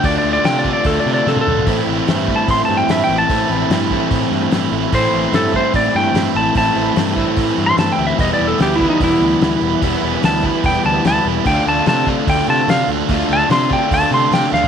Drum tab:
HH |o---o---o-------|o---o---o---o---|o---o---o---o---|o---o---o---o---|
SD |----o-------o---|----oo------o---|----o-------o---|----o-------o---|
T1 |-------------o--|----------------|----------------|----------------|
T2 |--------------o-|----------------|----------------|----------------|
FT |---------------o|----------------|----------------|----------------|
BD |o-----o-o-------|o-----o-o-------|o-----o-o-------|o-----o-o-------|

HH |o---o---o---o---|o---o---o---o---|o---o---o---o---|o---o---o---o---|
SD |----o-------o---|----oo------o---|----o-------o---|----o-------o---|
T1 |----------------|----------------|----------------|----------------|
T2 |----------------|----------------|----------------|----------------|
FT |----------------|----------------|----------------|----------------|
BD |o-----o-o-------|o-----o-o-------|o-----o-o-------|o-----o-o-------|

HH |o---o---o---o---|
SD |----o-------o-o-|
T1 |----------------|
T2 |----------------|
FT |---------------o|
BD |o-----o-o-------|